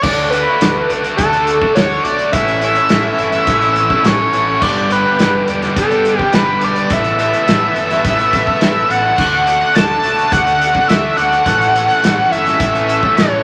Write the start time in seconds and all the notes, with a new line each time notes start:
0.02 D2 D3 A3 D4 F#4 A4 D5 F#5 D6, kick, crash
0.30 D3 A3 D4 F#4 B4, closed hi-hat
0.47 A3 D4 F#4
0.60 D2 D3 A3 D4 F#4, snare, closed hi-hat
0.89 B1 D3 A3 D4 F#4, closed hi-hat
1.04 A3 D4 F#4, closed hi-hat
1.17 D2 D3 A3 D4 F#4 A4, kick, closed hi-hat
1.33 A3 D4 F#4, closed hi-hat
1.47 closed hi-hat
1.61 A3 D4 F#4, kick
1.75 D2 D3 A3 D4 F#4 C#5, snare, closed hi-hat
2.03 B1 D3 A3 D4 F#4 D5, closed hi-hat
2.17 A3 D4 F#4, closed hi-hat
2.32 A1 A2 E3 A3 C#4 E4 E5 F#5 C#6, kick, closed hi-hat
2.48 closed hi-hat
2.61 E3 A3 C#4 E4 E5, closed hi-hat
2.75 A3 C#4 E4, closed hi-hat
2.89 A1 A2 E3 A3 C#4 E4, snare, closed hi-hat
3.18 G1 E3 A3 C#4 E4, closed hi-hat
3.32 A3 C#4 E4, closed hi-hat
3.47 A1 E3 A3 C#4 E4, kick, closed hi-hat
3.61 A3 C#4 E4, closed hi-hat
3.76 closed hi-hat
3.90 A3 C#4 E4, kick
4.04 A1 A2 E3 A3 C#4 E4 C#5, snare, closed hi-hat
4.33 A1 E3 A3 C#4 E4, closed hi-hat
4.47 A3 C#4 E4
4.62 G1 G2 D3 G3 B3 D4 G4 B4 D5 G5 D6, kick, crash
4.90 G3 B3 D4 G4 B4, closed hi-hat
5.05 G3 B3 D4 G4
5.19 G1 G2 D3 G3 B3 D4 G4, snare, closed hi-hat
5.48 E1 G3 B3 D4 G4, closed hi-hat
5.62 G3 B3 D4 G4, snare, closed hi-hat
5.76 G1 G3 B3 D4 G4 A4, kick, closed hi-hat
5.90 G3 B3 D4 G4, closed hi-hat
6.05 closed hi-hat
6.19 G3 B3 D4 G4, kick
6.33 G1 G2 D3 G3 B3 D4 G4 B4, snare, closed hi-hat
6.61 B1 G3 B3 D4 G4 D5, closed hi-hat
6.76 G3 B3 D4 G4, closed hi-hat
6.90 A1 A2 E3 A3 B3 A4 E5 A5 E6, kick, closed hi-hat
7.04 closed hi-hat
7.18 E3 A3 B3 A4 E5, closed hi-hat
7.32 A3 B3 A4, closed hi-hat
7.46 A1 A2 E3 A3 B3 A4, snare, closed hi-hat
7.75 G1 E3 A3 B3 A4, closed hi-hat
7.89 A3 B3 A4, snare, closed hi-hat
8.04 A1 E3 A3 B3 A4, kick, closed hi-hat
8.18 A3 B3 A4, closed hi-hat
8.33 kick, closed hi-hat
8.47 A3 B3 A4, kick
8.61 A1 A2 E3 A3 B3 A4, snare, closed hi-hat
8.89 A1 E3 A3 B3 A4 F#5, closed hi-hat
9.03 A3 B3 A4
9.17 D2 D3 A3 D4 F#4 A4 F#5 D6, kick, crash
9.46 D3 A3 D4 F#4 F#5, closed hi-hat
9.61 A3 D4 F#4
9.74 D2 D3 A3 D4 F#4 A5, snare, closed hi-hat
10.03 B1 D3 A3 D4 F#4 A5, closed hi-hat
10.16 A3 D4 F#4, closed hi-hat
10.31 D2 D3 A3 D4 F#4 F#5, kick, closed hi-hat
10.45 A3 D4 F#4, closed hi-hat
10.61 closed hi-hat
10.73 A3 D4 F#4, kick
10.87 D2 D3 A3 D4 F#4 E5, snare, closed hi-hat
11.17 D2 D3 A3 D4 F#4 F#5, closed hi-hat
11.31 A3 D4 F#4, closed hi-hat
11.45 A1 A2 E3 A3 C#4 A4 C#6, kick, closed hi-hat
11.61 closed hi-hat
11.74 E3 A3 C#4 A4, closed hi-hat
11.88 A3 C#4 A4, closed hi-hat
12.02 A1 A2 E3 A3 C#4 A4, snare, closed hi-hat
12.30 G1 E3 A3 C#4 A4 E5, closed hi-hat
12.45 A3 C#4 A4, snare, closed hi-hat
12.58 A1 E3 A3 C#4 A4, kick, closed hi-hat
12.73 A3 C#4 A4, closed hi-hat
12.89 closed hi-hat
13.03 A3 C#4 A4, kick
13.16 A1 A2 E3 A3 C#4 A4 C#5, snare, closed hi-hat